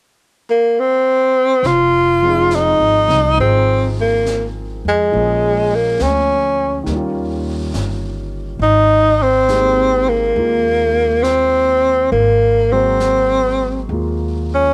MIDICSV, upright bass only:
0, 0, Header, 1, 2, 480
1, 0, Start_track
1, 0, Key_signature, -4, "minor"
1, 0, Tempo, 874636
1, 890, Time_signature, 4, 2, 24, 8
1, 5683, Tempo, 883652
1, 8063, End_track
2, 0, Start_track
2, 0, Title_t, "Upright bass"
2, 0, Program_c, 0, 32
2, 893, Note_on_c, 0, 29, 58
2, 1511, Note_off_c, 0, 29, 0
2, 1534, Note_on_c, 0, 32, 40
2, 1682, Note_off_c, 0, 32, 0
2, 1693, Note_on_c, 0, 36, 52
2, 1841, Note_off_c, 0, 36, 0
2, 1852, Note_on_c, 0, 32, 59
2, 2640, Note_off_c, 0, 32, 0
2, 2661, Note_on_c, 0, 41, 47
2, 2803, Note_off_c, 0, 41, 0
2, 2817, Note_on_c, 0, 34, 60
2, 3271, Note_off_c, 0, 34, 0
2, 3295, Note_on_c, 0, 38, 57
2, 3751, Note_off_c, 0, 38, 0
2, 3767, Note_on_c, 0, 39, 62
2, 4226, Note_off_c, 0, 39, 0
2, 4250, Note_on_c, 0, 31, 57
2, 4705, Note_off_c, 0, 31, 0
2, 4716, Note_on_c, 0, 32, 66
2, 5660, Note_off_c, 0, 32, 0
2, 5684, Note_on_c, 0, 39, 66
2, 6620, Note_off_c, 0, 39, 0
2, 6640, Note_on_c, 0, 32, 64
2, 7579, Note_off_c, 0, 32, 0
2, 7603, Note_on_c, 0, 39, 62
2, 8063, Note_off_c, 0, 39, 0
2, 8063, End_track
0, 0, End_of_file